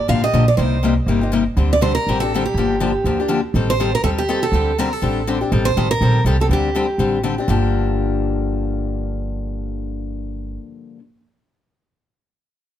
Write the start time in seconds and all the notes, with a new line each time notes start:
0.08 A1 D3 F3 A#3 D4 G4 F5
0.24 A#3 D4 G4 D#5
0.33 A#1 D3 F3 A#3 D4 G4
0.48 D5
0.57 C2 C3 G3 A#3 D#4 G4 C5
0.83 C3 G3 A#3 D#4 G4
1.06 G1 C3 G3 A#3 D#4 G4
1.21 A#3 D#4 G4
1.32 C3 G3 A#3 D#4 G4
1.57 D2 D3 G3 C4 D4 G4
1.73 D5
1.81 D3 G3 C4 D4 G4 C5
1.95 A#4
2.07 A1 D3 G3 C4 D4 G4
2.20 C4 D4 G4 A4
2.34 D3 G3 C4 D4 G4
2.46 G4
2.54 G1 D3 F3 A#3 D4
2.59 G4
2.80 D3 F3 A#3 D4 G4
3.04 D2 D3 F3 A#3 D4 G4
3.20 A#3 D4 G4
3.28 D3 F3 A#3 D4 G4
3.54 A1 D#3 G3 C4 G4 A4
3.70 C5
3.80 D#3 G3 C4 G4 A4
3.95 A#4
4.03 D#2 D#3 G3 C4 G4 A4
4.18 G4
4.29 D#3 G3 C4 G4 A4
4.42 C4 G4 A4
4.52 D2 D3 G3 C4 D4 G4
4.78 D3 G3 C4 D4 G4 A#4
4.93 A4
5.02 A1 D3 G3 C4 D4 G4
5.27 D3 G3 C4 D4 G4
5.41 C4 D4 G4
5.52 A1 D#3 G3 C4 G4 A4
5.65 C5
5.77 A1 D#3 G3 C4 G4 A4
5.91 A#4
6.01 A#1 D#3 G3 C4 G4 A4
6.24 C2 D#3 G3 C4 G4 A4
6.41 C4 G4 A4
6.49 D2 D3 G3 C4 D4 G4
6.75 D3 G3 C4 D4 G4
6.98 A1 D3 G3 C4 D4 G4
7.23 D3 G3 C4 D4 G4
7.38 C4 D4 G4
7.48 G1 G2 D3 F3 A#3 D4 G4